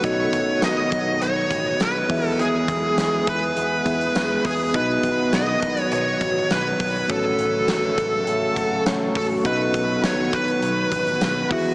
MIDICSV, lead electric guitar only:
0, 0, Header, 1, 2, 480
1, 0, Start_track
1, 0, Tempo, 588235
1, 31, Time_signature, 4, 2, 24, 8
1, 9584, End_track
2, 0, Start_track
2, 0, Title_t, "Lead electric guitar"
2, 0, Program_c, 0, 29
2, 39, Note_on_c, 0, 73, 100
2, 482, Note_off_c, 0, 73, 0
2, 521, Note_on_c, 0, 75, 99
2, 963, Note_off_c, 0, 75, 0
2, 999, Note_on_c, 0, 73, 95
2, 1483, Note_on_c, 0, 71, 93
2, 1489, Note_off_c, 0, 73, 0
2, 1858, Note_off_c, 0, 71, 0
2, 1858, Note_on_c, 0, 69, 93
2, 1959, Note_off_c, 0, 69, 0
2, 1962, Note_on_c, 0, 68, 94
2, 2682, Note_off_c, 0, 68, 0
2, 2685, Note_on_c, 0, 71, 93
2, 3605, Note_off_c, 0, 71, 0
2, 3640, Note_on_c, 0, 68, 81
2, 3879, Note_off_c, 0, 68, 0
2, 3882, Note_on_c, 0, 71, 90
2, 4358, Note_on_c, 0, 75, 92
2, 4371, Note_off_c, 0, 71, 0
2, 4741, Note_off_c, 0, 75, 0
2, 4741, Note_on_c, 0, 73, 92
2, 4836, Note_off_c, 0, 73, 0
2, 4839, Note_on_c, 0, 73, 99
2, 5318, Note_on_c, 0, 71, 84
2, 5329, Note_off_c, 0, 73, 0
2, 5800, Note_off_c, 0, 71, 0
2, 5803, Note_on_c, 0, 69, 81
2, 7204, Note_off_c, 0, 69, 0
2, 7481, Note_on_c, 0, 69, 88
2, 7544, Note_off_c, 0, 69, 0
2, 7719, Note_on_c, 0, 71, 97
2, 8162, Note_off_c, 0, 71, 0
2, 8202, Note_on_c, 0, 73, 101
2, 8440, Note_on_c, 0, 71, 95
2, 8443, Note_off_c, 0, 73, 0
2, 9363, Note_off_c, 0, 71, 0
2, 9404, Note_on_c, 0, 66, 82
2, 9584, Note_off_c, 0, 66, 0
2, 9584, End_track
0, 0, End_of_file